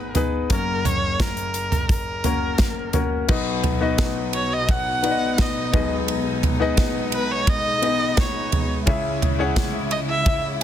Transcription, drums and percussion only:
0.15 closed hi-hat medium
0.15 floor tom medium
0.50 kick medium
0.50 closed hi-hat medium
0.85 closed hi-hat medium
0.85 floor tom medium
1.20 kick loud
1.20 snare medium
1.20 closed hi-hat medium
1.37 closed hi-hat soft
1.54 closed hi-hat medium
1.72 closed hi-hat soft
1.72 floor tom medium
1.89 kick loud
1.89 closed hi-hat medium
2.24 closed hi-hat medium
2.24 floor tom medium
2.58 kick loud
2.58 snare loud
2.58 closed hi-hat medium
2.93 closed hi-hat medium
2.93 floor tom medium
3.28 kick loud
3.28 crash medium
3.64 floor tom medium
3.64 ride soft
3.98 kick loud
3.98 snare loud
3.98 ride medium
4.33 ride medium
4.69 kick loud
4.69 ride medium
5.04 ride medium
5.38 kick loud
5.38 snare loud
5.38 ride medium
5.73 kick loud
5.73 floor tom medium
5.73 ride medium
6.08 ride medium
6.43 floor tom medium
6.43 ride soft
6.77 kick loud
6.77 snare loud
6.77 ride medium
7.12 ride medium
7.47 kick loud
7.47 ride medium
7.83 ride medium
8.17 kick loud
8.17 snare loud
8.17 ride medium
8.52 floor tom medium
8.52 ride medium
8.87 kick loud
8.87 ride medium
9.22 floor tom medium
9.22 ride medium
9.56 kick loud
9.56 snare loud
9.56 ride medium
9.91 ride medium
10.26 kick loud
10.26 ride medium

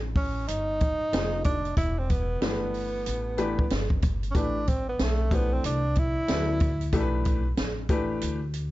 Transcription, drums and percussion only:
0.16 kick loud
0.16 open hi-hat soft
0.48 closed hi-hat medium
0.80 kick medium
0.80 closed hi-hat medium
1.13 snare loud
1.13 closed hi-hat medium
1.44 kick loud
1.44 closed hi-hat medium
1.65 closed hi-hat soft
1.77 kick loud
1.77 closed hi-hat medium
2.10 kick medium
2.10 closed hi-hat medium
2.42 snare medium
2.42 closed hi-hat medium
2.74 open hi-hat soft
3.06 closed hi-hat medium
3.38 closed hi-hat medium
3.59 kick medium
3.70 snare loud
3.70 closed hi-hat medium
3.90 kick medium
4.02 kick loud
4.02 closed hi-hat medium
4.23 closed hi-hat soft
4.35 kick loud
4.35 closed hi-hat medium
4.67 kick medium
4.67 closed hi-hat medium
4.99 snare loud
4.99 closed hi-hat medium
5.31 kick medium
5.31 closed hi-hat medium
5.64 closed hi-hat loud
5.95 kick medium
5.95 closed hi-hat medium
6.28 snare loud
6.28 closed hi-hat medium
6.60 kick loud
6.60 closed hi-hat medium
6.81 closed hi-hat soft
6.92 kick loud
6.92 closed hi-hat medium
7.25 kick medium
7.25 closed hi-hat medium
7.57 snare loud
7.57 closed hi-hat medium
7.89 kick loud
7.89 closed hi-hat medium
8.21 closed hi-hat medium
8.54 closed hi-hat medium

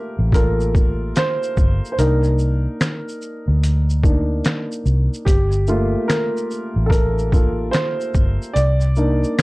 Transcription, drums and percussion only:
0.32 kick medium
0.32 closed hi-hat medium
0.32 shaker medium
0.60 shaker soft
0.75 kick loud
0.75 shaker soft
1.16 finger snap medium
1.16 snare loud
1.16 closed hi-hat medium
1.16 shaker medium
1.43 shaker soft
1.57 kick medium
1.57 shaker soft
1.85 shaker soft
1.99 closed hi-hat medium
1.99 shaker medium
2.23 shaker soft
2.39 shaker soft
2.81 finger snap medium
2.81 snare loud
2.81 closed hi-hat medium
2.81 shaker medium
3.09 shaker soft
3.22 shaker soft
3.64 closed hi-hat medium
3.64 shaker medium
3.90 shaker soft
4.04 kick medium
4.04 shaker soft
4.45 finger snap medium
4.45 snare loud
4.45 closed hi-hat medium
4.45 shaker medium
4.72 shaker soft
4.86 shaker soft
5.14 shaker soft
5.27 kick loud
5.27 closed hi-hat medium
5.27 shaker medium
5.52 shaker soft
5.67 shaker medium
6.10 finger snap medium
6.10 snare loud
6.10 closed hi-hat medium
6.10 shaker medium
6.37 shaker soft
6.51 shaker soft
6.90 kick medium
6.90 closed hi-hat medium
6.90 shaker medium
7.18 shaker soft
7.32 kick medium
7.32 shaker soft
7.73 finger snap medium
7.73 snare loud
7.73 closed hi-hat medium
7.73 shaker medium
8.00 shaker soft
8.14 kick medium
8.14 shaker soft
8.42 shaker soft
8.56 closed hi-hat medium
8.56 shaker medium
8.80 shaker soft
8.96 shaker soft
9.24 shaker soft
9.39 snare loud
9.39 closed hi-hat medium
9.39 shaker medium

